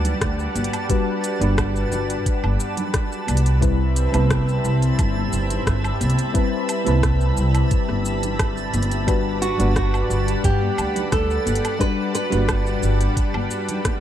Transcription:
Already playing: D2 G3 D4 F#4 B4 D5 F#5 A5 B5
0.05 closed hi-hat, low conga, shaker
0.21 D2, kick, cross-stick, closed hi-hat, shaker
0.39 shaker
0.56 G1, closed hi-hat, high conga, shaker
0.64 closed hi-hat
0.73 closed hi-hat, low woodblock, shaker
0.89 G3 D4 F#4 B4, kick, closed hi-hat, shaker
1.24 closed hi-hat, shaker
1.40 G1 G3 D4 F#4 B4, closed hi-hat, high conga, shaker
1.58 kick, cross-stick, closed hi-hat, low woodblock, shaker
1.76 shaker
1.92 G1, shaker
2.10 closed hi-hat, shaker
2.26 kick, closed hi-hat, shaker
2.43 G1, high conga, low woodblock
2.60 shaker
2.77 closed hi-hat, low conga, shaker
2.94 kick, cross-stick, closed hi-hat, shaker
3.12 shaker
3.27 C2, closed hi-hat, high conga, low woodblock, shaker
3.37 closed hi-hat
3.46 closed hi-hat, shaker
3.61 G3 C4 E4 B4 E5, kick, closed hi-hat, shaker
3.96 closed hi-hat, shaker
4.12 C2 G3 C4 E4 B4, closed hi-hat, high conga, low woodblock, shaker
4.31 kick, cross-stick, closed hi-hat, shaker
4.49 shaker
4.64 C2, shaker
4.82 closed hi-hat, shaker
4.99 G1, kick, closed hi-hat, low woodblock, shaker
5.16 high conga
5.33 G1, shaker
5.50 closed hi-hat, low conga, shaker
5.67 G1, kick, cross-stick, closed hi-hat, shaker
5.84 low woodblock, shaker
6.01 C2, closed hi-hat, high conga, shaker
6.10 closed hi-hat
6.19 closed hi-hat, shaker
6.33 G3 C4 E4 B4, kick, closed hi-hat, shaker
6.69 closed hi-hat, low woodblock, shaker
6.85 C2 G3 C4 E4 B4, closed hi-hat, high conga, shaker
7.03 kick, cross-stick, closed hi-hat, shaker
7.21 shaker
7.37 C2, shaker
7.55 closed hi-hat, low woodblock, shaker
7.71 kick, closed hi-hat, shaker
7.88 G1, cross-stick, high conga
8.05 shaker
8.23 closed hi-hat, low conga, shaker
8.39 kick, cross-stick, closed hi-hat, low woodblock, shaker
8.57 shaker
8.74 G1, closed hi-hat, high conga, shaker
8.83 closed hi-hat
8.91 closed hi-hat, shaker
9.07 G3 D4 F#4 B4 D5 F#5, kick, closed hi-hat, low woodblock, shaker
9.42 F#4, closed hi-hat, shaker
9.58 G1 G3 D4 B4 F#5, closed hi-hat, high conga, shaker
9.76 F#4, kick, cross-stick, closed hi-hat, shaker
9.94 low woodblock, shaker
10.10 G1, shaker
10.28 closed hi-hat, shaker
10.44 G2 G4, kick, closed hi-hat, shaker
10.61 high conga
10.78 D2, low woodblock, shaker
10.95 closed hi-hat, low conga, shaker
11.12 D2 A4, kick, cross-stick, closed hi-hat, shaker
11.30 shaker
11.46 G1, closed hi-hat, high conga, shaker
11.55 closed hi-hat
11.65 closed hi-hat, low woodblock, shaker
11.79 G3 D4 F#4 B4, kick, closed hi-hat, shaker
12.15 B4, closed hi-hat, shaker
12.30 G1 G3 D4 F#4 B4, closed hi-hat, high conga, shaker
12.49 kick, cross-stick, closed hi-hat, low woodblock, shaker
12.67 shaker
12.83 G1, shaker
13.01 closed hi-hat, muted conga, shaker
13.17 kick, closed hi-hat, shaker
13.34 G1, high conga, low woodblock
13.51 shaker
13.69 closed hi-hat, low conga, shaker
13.84 kick, cross-stick, closed hi-hat, muted conga, shaker

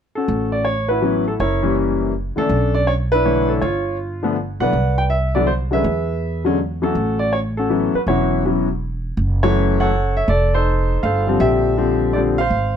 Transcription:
0.15 C#4 F#4 A4
0.28 A1
0.52 D5
0.65 C#5
0.89 E4 F#4 B4
1.02 E3 F#3 B3 C#4
1.28 A4
1.40 F#1 E4 A#4 C#5
1.63 E3 G3 A#3 C#4
2.36 D3 E3 A3 C#4 A4, muted upright bass stroke
2.40 C#4 D4
2.49 B1
2.75 D5
2.87 C#5
3.12 D4 E4 B4
3.25 D3 E3 A3 C#5
3.49 A4
3.62 G1 F4 C#5
4.23 D3 F3 A3 B3
4.60 B1 D3 E3 F#3 B3 B4 D5 F#5
4.73 C2
4.98 G5
5.10 E5
5.35 D3 E3 F#3 B3 D5
5.47 C5
5.71 D3 F#3 G#3 C#4 B4 E5
5.75 G#4
5.84 E2
6.45 D3 F#3 G#3 C#4
6.82 E3 F#3 B3 C#4 F#4 A4
6.86 C#4
6.95 A1
7.19 D5
7.33 C#5
7.57 C#4 F#4 A4
7.69 E3 F#3 B3 C#4
7.94 B4, muted upright bass stroke
8.07 E1 E3 F#3 B3 C#4 E4 F#4 C#5
8.45 E3 F#3 B3 C#4
9.17 F#1
9.43 E3 F#3 A3 C#4 E4 A4 C#5
9.80 A4 C#5 F#5
10.17 E5
10.28 F1 A4 D5
10.54 D#4 A4 C5
11.03 G1 A4 C5 F5
11.27 D3 F3 G3 C4
11.40 A#1 G4 E5
11.77 D3 F3 G3 C4
12.13 D3 F3 G3 C4 D5
12.38 C5 F5
12.50 G#1

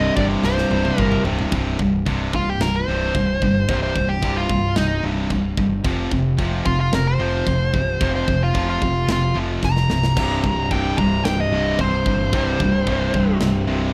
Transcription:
Already playing: C2 G2 C3 D#5
0.16 G1 C2 G2 C3 D5, kick
0.43 C1 C2 G2 C3 C5, snare
0.58 snare
0.71 C1 C2 G2 C3, high tom
0.85 high tom
0.98 G1 C2 G2 C3 A#4, kick, mid tom
1.12 mid tom
1.24 C1 C2 G2 C3, floor tom
1.39 floor tom
1.52 C1 C2 G2 C3, kick, china
1.79 C1 C2 G2, kick
2.06 C1 C2 G2 C3, kick, china
2.33 C1 C2 G2 F4, kick
2.50 G4
2.60 C1 C2 G2 A#4, snare, china
2.76 C5
2.88 C1 C2 G2 C3
3.15 C1 C2 G2, kick, china
3.42 G1 C2 G2, kick
3.68 C1 C2 G2 C3, kick, china
3.83 C5
3.96 C1 C2 G2, kick
4.09 G4
4.22 C1 C2 G2 C3, kick, china
4.37 F4
4.49 C1 C2 G2, kick
4.76 C1 C2 G2 D#4, snare, china
5.03 C1 C2 G2 C3
5.30 C1 C2 G2, kick, china
5.57 G1 C2 G2, kick
5.84 F1 F2 C3 F3, kick, china
6.11 F1 F2 C3, kick
6.38 F1 F2 C3 F3, kick, china
6.66 F1 F2 C3 F4, kick
6.80 F4
6.93 F1 F2 C3 A#4, snare, china
7.07 C5
7.19 F1 F2 C3 F3
7.47 F1 F2 C3, kick, china
7.73 C1 F2 C3, kick
8.01 F1 F2 C3 F3, kick, china
8.16 C5
8.28 F1 F2 C3, kick
8.44 F4
8.54 F1 F2 C3 F3, kick, china
8.69 F4
8.81 F1 F2 C3, kick
9.08 F1 F2 C3 F4, snare, china
9.35 F1 F2 C3 F3
9.62 F1 F2 C3 A#5, kick, snare
9.76 snare
9.90 C1 F2 C3, snare
10.03 snare
10.17 C1 C2 G2 C3, kick, china, crash
10.43 C1 C2 G2, kick
10.70 C1 C2 G2 C3 G5, kick, china
10.98 C1 C2 G2 C3 A#5, kick
11.25 C1 C2 G2 G5, snare, china
11.40 D#5
11.52 C1 C2 G2 C3
11.79 C1 C2 G2 C3 C5, kick, china
12.06 G1 C2 G2, kick
12.33 C1 C2 G2 C3, kick, china
12.60 C1 C2 G2, kick
12.87 C1 C2 G2 C3, kick, china
13.14 C1 C2 G2 C3, kick
13.40 C1 C2 G2, snare, china
13.67 C1 C2 G2 C3

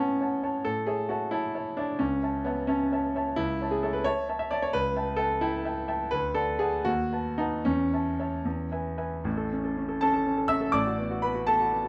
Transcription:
Already playing: A2 B3 C#4 C#5 F#5 A5
0.21 C#5 F#5 A5
0.43 C#5 F#5 A5
0.65 A2 A4
0.86 G#4 C#5 E5 A5
1.09 F#4 C#5 E5 A5
1.31 E4 C#5 E5 A5
1.55 C#5 E5 A5
1.77 D4 C#5 E5 A5
1.99 C#2 C#4
2.23 C#5 E5 A5
2.44 B3 C#5 E5 A5
2.67 C#4 C#5 E5 A5
2.92 C#5 E5 A5
3.15 C#5 E5 A5
3.36 C#2 E4
3.61 C#5 E5 A5
3.71 G#4
3.83 A4 C#5 E5 A5
3.93 B4
4.04 C#5 E5 A5
4.29 C#5 E5 A5
4.39 E5
4.51 C#5 D5 E5 A5
4.62 C#5
4.73 C#2 B4
4.96 E5 G5 A5
5.17 A4 E5 G5 A5
5.41 E4 E5 G5 A5
5.65 E5 G5 A5
5.88 E5 G5 A5
6.11 D2 B4
6.34 A4 D5 F#5 A5
6.59 G#4 D5 F#5 A5
6.85 D#2 F#4
7.12 B4 F#5 A5
7.38 D#4 B4 F#5 A5
7.65 E2 C#4
7.93 C#5 E5 A5
8.19 C#5 E5 A5
8.45 E2
8.72 B4 E5 G#5
8.97 B4 E5 G#5
9.24 A1 A2
9.37 A4
9.53 C#4
9.65 A4
9.77 C#4
9.89 A4
10.01 C#4 A4 A5
10.14 A4
10.26 C#4
10.37 A4
10.48 C#4 E5 E6
10.61 A4
10.72 A1 A2 D5 D6
10.87 F#4
10.98 B3
11.11 F#4
11.22 B3 B4 B5
11.35 F#4
11.47 B3 A4 A5
11.60 F#4
11.72 B3
11.84 F#4

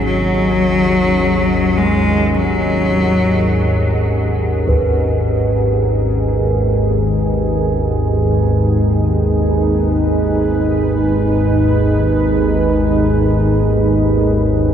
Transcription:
Already playing: G#1 D#2 C#4 G#4 D#5 F#5
0.05 F#3
1.77 G#3
2.34 F#3
4.64 G#3 B4, taiko
6.05 D#4
8.06 B4
13.84 C#4

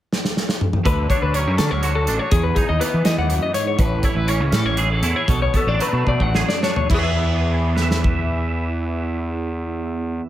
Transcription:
0.13 snare
0.25 snare
0.37 snare
0.49 snare
0.61 mid tom
0.73 mid tom
0.85 D2 D3 B4, kick, closed hi-hat
1.10 D4 C#5, kick, closed hi-hat
1.22 D2 B4
1.34 F#3 C#4 C#5, closed hi-hat
1.47 F#2
1.58 D3 A4, snare, closed hi-hat
1.71 D2 C#5
1.83 D3 F#4, closed hi-hat
1.95 A4
2.07 A1 D4, closed hi-hat
2.19 C#5
2.31 E2 G#4, kick, closed hi-hat
2.43 B4
2.55 D#4 G#4, kick, closed hi-hat
2.69 D#2 D#5
2.79 E3 B3 B4, closed hi-hat
2.94 E3
3.04 E2 E3 D#5, snare, closed hi-hat
3.18 D#2 F#5
3.28 F#2, closed hi-hat
3.42 D#5
3.53 G#2 C#5, closed hi-hat
3.67 C#5
3.78 A1 A2 B4, kick, closed hi-hat
4.03 E4 C#5, kick, closed hi-hat
4.15 A1 B4
4.27 E3 C#4 C#5, closed hi-hat
4.40 C#2
4.52 A2 A4, snare, closed hi-hat
4.65 A1 C#5
4.77 E3 G#4, closed hi-hat
4.90 A4
5.02 E2 E4, closed hi-hat
5.16 C#5
5.27 B1 B2 A4, kick, closed hi-hat
5.42 C#5
5.54 B3 A4, kick, closed hi-hat
5.67 A1 D4 D5
5.80 F#3 A3 B4, closed hi-hat
5.93 B2
6.07 B2 D5, kick
6.20 A1 F#5, kick
6.34 F#2 G#4, snare
6.48 D5, snare
6.62 D4 C#5, snare
6.76 C#5, floor tom
6.90 E2 E3 E4, kick, crash
6.94 B3 G#4
6.98 G#4 B4
7.03 E5
7.76 B4, snare
7.82 E5
7.91 snare
8.04 kick

